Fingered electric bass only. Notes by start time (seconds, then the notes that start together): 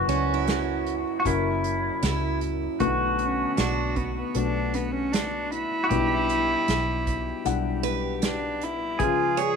0.08 C#2
1.25 F#1
2.03 C#2
2.80 B1
3.58 B1
4.35 B1
5.90 B1
6.68 B1
7.46 B1
9.00 C#2